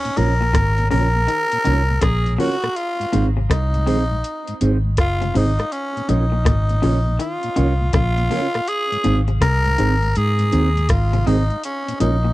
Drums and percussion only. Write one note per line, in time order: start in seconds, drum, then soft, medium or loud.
0.05 closed hi-hat soft
0.17 closed hi-hat medium
0.54 kick loud
0.54 cross-stick loud
0.54 closed hi-hat loud
0.78 closed hi-hat medium
0.91 open hi-hat medium
1.28 closed hi-hat medium
1.52 closed hi-hat medium
1.65 closed hi-hat medium
2.01 kick loud
2.01 cross-stick loud
2.01 closed hi-hat medium
2.26 closed hi-hat medium
2.40 open hi-hat medium
2.63 cross-stick medium
2.63 closed hi-hat soft
2.76 closed hi-hat medium
3.01 closed hi-hat medium
3.13 closed hi-hat medium
3.50 kick loud
3.50 cross-stick loud
3.50 closed hi-hat loud
3.74 closed hi-hat soft
3.87 open hi-hat medium
4.24 closed hi-hat loud
4.47 closed hi-hat medium
4.61 closed hi-hat medium
4.97 kick loud
4.97 cross-stick loud
4.97 closed hi-hat medium
5.22 closed hi-hat medium
5.35 open hi-hat medium
5.59 cross-stick medium
5.59 closed hi-hat soft
5.72 closed hi-hat medium
5.97 closed hi-hat medium
6.09 closed hi-hat medium
6.45 kick loud
6.45 cross-stick loud
6.45 closed hi-hat loud
6.69 closed hi-hat medium
6.83 open hi-hat medium
7.20 closed hi-hat loud
7.43 closed hi-hat medium
7.56 closed hi-hat medium
7.93 kick loud
7.93 cross-stick loud
7.93 closed hi-hat medium
8.18 closed hi-hat soft
8.31 open hi-hat medium
8.54 cross-stick medium
8.54 closed hi-hat soft
8.68 closed hi-hat loud
8.92 closed hi-hat medium
9.04 closed hi-hat medium
9.28 closed hi-hat soft
9.41 kick loud
9.41 cross-stick loud
9.41 closed hi-hat loud
9.65 closed hi-hat medium
9.78 closed hi-hat loud
10.02 closed hi-hat soft
10.15 closed hi-hat loud
10.39 closed hi-hat medium
10.52 closed hi-hat medium
10.77 closed hi-hat soft
10.89 kick loud
10.89 cross-stick loud
10.89 closed hi-hat medium
11.13 closed hi-hat medium
11.27 open hi-hat medium
11.50 closed hi-hat soft
11.63 closed hi-hat medium
11.88 closed hi-hat medium
12.00 closed hi-hat medium